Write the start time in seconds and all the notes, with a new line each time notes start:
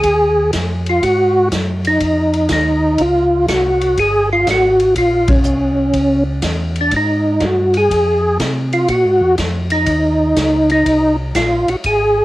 Already playing: G#4
0.04 D#2, kick, ride
0.53 F2, kick, snare, hi-hat pedal, ride
0.86 F4, ride
1.03 G#2 F#4, kick, ride
1.52 F#2, kick, snare, hi-hat pedal, ride
1.85 D#4, ride
2.00 F2, kick, ride
2.33 ride
2.49 D#2 D#4, kick, snare, hi-hat pedal, ride
2.98 C#2 F4, kick, ride
3.48 C2 F#4, kick, snare, hi-hat pedal, ride
3.81 ride
3.97 G1 G#4, kick, ride
4.33 F4
4.47 G#1, kick, snare, hi-hat pedal, ride
4.51 F#4
4.80 ride
4.96 A#1 F4, kick, ride
5.28 C#4, kick, ride
5.44 C2, hi-hat pedal
5.93 C#2, kick, ride
6.42 E2, kick, snare, hi-hat pedal, ride
6.76 ride
6.81 D4
6.91 G#2, kick, ride
6.96 D#4
7.40 G2, kick, snare, hi-hat pedal, ride
7.44 F#4
7.73 G#4, ride
7.90 F2, kick, ride
8.39 C3, kick, snare, hi-hat pedal, ride
8.72 F4, ride
8.88 A#2 F#4, kick, ride
9.05 G#2
9.21 F2
9.38 F2, kick, snare, hi-hat pedal, ride
9.70 D#4, ride
9.86 D#2, kick, ride
10.36 C#2, kick, snare, hi-hat pedal, ride
10.70 D#4, ride
10.86 C2, kick, ride
11.35 A#1 F4, kick, snare, hi-hat pedal, ride
11.68 A#1 F#4, ride
11.84 G#1 G#4, kick, ride